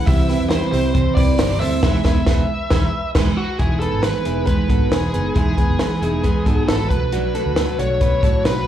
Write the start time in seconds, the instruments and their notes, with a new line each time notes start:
0.06 fingered electric bass C2, steel-string acoustic guitar C3 E3 G3 C4 E4, clean electric guitar E4 G4, lead electric guitar E5, kick, hi-hat pedal, open hi-hat, tambourine
0.28 steel-string acoustic guitar G3 C4 E4, clean electric guitar G4 B4, hi-hat pedal, open hi-hat, tambourine
0.40 fingered electric bass E2
0.49 steel-string acoustic guitar C3 E3 G3 C4 E4, clean electric guitar G4 B4, lead electric guitar C5, snare, hi-hat pedal, open hi-hat, tambourine
0.72 fingered electric bass C2, steel-string acoustic guitar G3 C4 E4, clean electric guitar E4 G4, lead electric guitar C5, hi-hat pedal, open hi-hat, tambourine
0.94 fingered electric bass C3, steel-string acoustic guitar E3 G3 C4 E4, clean electric guitar G4 C5, kick, hi-hat pedal, open hi-hat, tambourine
1.15 fingered electric bass C2, steel-string acoustic guitar C4 E4, clean electric guitar G4 B4, lead electric guitar D5, kick, hi-hat pedal, open hi-hat, tambourine
1.20 steel-string acoustic guitar G3
1.38 fingered electric bass G1, steel-string acoustic guitar C3 E3 G3 C4 E4, clean electric guitar G4 C5, snare, hi-hat pedal, open hi-hat, tambourine
1.60 fingered electric bass D2, steel-string acoustic guitar G3 C4 E4, clean electric guitar A4 C5, lead electric guitar E5, hi-hat pedal, open hi-hat
1.83 fingered electric bass E1, steel-string acoustic guitar E3 G#3 B3 D#4, clean electric guitar E4 G#4, kick, snare, crash
2.04 fingered electric bass E1, steel-string acoustic guitar G#3 B3 D#4, clean electric guitar G#4 B4, kick, snare
2.26 fingered electric bass E1, steel-string acoustic guitar E3 G#3 B3 D#4, clean electric guitar G#4 B4, kick, snare
2.70 fingered electric bass E1, steel-string acoustic guitar E3 G#3 B3 D#4, clean electric guitar G#4 B4, kick, snare
3.15 fingered electric bass E1, steel-string acoustic guitar E3 G#3 B3 D#4, clean electric guitar G#4 B4, kick, snare, crash
3.38 lead electric guitar F#4
3.58 fingered electric bass E1, steel-string acoustic guitar E3 G#3 B3 D#4, clean electric guitar E4 G#4, lead electric guitar G#4, kick, closed hi-hat
3.80 steel-string acoustic guitar G#3 B3 D#4, clean electric guitar G#4 B4, lead electric guitar A4, closed hi-hat
3.93 fingered electric bass G#1
4.02 steel-string acoustic guitar E3 G#3 B3 D#4, clean electric guitar G#4 B4, lead electric guitar B4, snare, closed hi-hat
4.24 fingered electric bass E1, steel-string acoustic guitar G#3 B3 D#4, clean electric guitar E4 G#4, closed hi-hat
4.45 fingered electric bass E2, steel-string acoustic guitar E3 G#3 B3 D#4, clean electric guitar G#4 B4, lead electric guitar B4, kick, closed hi-hat
4.68 fingered electric bass G#1, steel-string acoustic guitar G#3 B3 D#4, clean electric guitar F#4 A4, kick, closed hi-hat
4.89 fingered electric bass E1, steel-string acoustic guitar E3 G#3 B3 D#4, clean electric guitar G#4 B4, lead electric guitar G#4, snare, closed hi-hat
5.12 fingered electric bass F#1, steel-string acoustic guitar G#3 B3 D#4, clean electric guitar G#4 B4, closed hi-hat
5.35 fingered electric bass E1, steel-string acoustic guitar E3 G#3 B3 D#4, clean electric guitar E4 G#4, lead electric guitar G#4, kick, closed hi-hat
5.57 steel-string acoustic guitar G#3 B3 D#4, clean electric guitar G#4 B4, kick, closed hi-hat
5.68 fingered electric bass F#1
5.79 steel-string acoustic guitar E3 G#3 B3 D#4, clean electric guitar G#4 B4, snare, closed hi-hat
6.02 fingered electric bass E1, steel-string acoustic guitar G#3 B3 D#4, clean electric guitar E4 G#4, closed hi-hat
6.23 fingered electric bass E2, steel-string acoustic guitar E3 G#3 B3 D#4, clean electric guitar G#4 B4, kick, closed hi-hat
6.46 fingered electric bass G#2, steel-string acoustic guitar G#3 B3 D#4, clean electric guitar F#4 A4, kick, closed hi-hat
6.68 fingered electric bass G#1, steel-string acoustic guitar E3 G#3 B3 D#4, clean electric guitar F#4 B4, lead electric guitar A4, snare, closed hi-hat
6.89 fingered electric bass B1, steel-string acoustic guitar A3 D4, lead electric guitar B4, kick, closed hi-hat
6.94 steel-string acoustic guitar F#3
7.12 steel-string acoustic guitar B2 F#3 A3 D4, clean electric guitar D4 F#4, closed hi-hat
7.35 steel-string acoustic guitar F#3 A3 D4, clean electric guitar F#4 A4, closed hi-hat
7.46 fingered electric bass D2
7.56 steel-string acoustic guitar B2 F#3 A3 D4, clean electric guitar F#4 A4, snare, closed hi-hat
7.78 fingered electric bass B1, steel-string acoustic guitar F#3 A3 D4, clean electric guitar D4 F#4, lead electric guitar C#5, closed hi-hat
8.01 steel-string acoustic guitar B2 F#3 A3 D4, fingered electric bass B2, clean electric guitar F#4 B4, kick, closed hi-hat
8.22 fingered electric bass A2, steel-string acoustic guitar F#3 A3 D4, clean electric guitar F#4 A4, kick, closed hi-hat
8.45 fingered electric bass B1, steel-string acoustic guitar B2 F#3 A3 D4, clean electric guitar F#4 B4, lead electric guitar B4, snare, closed hi-hat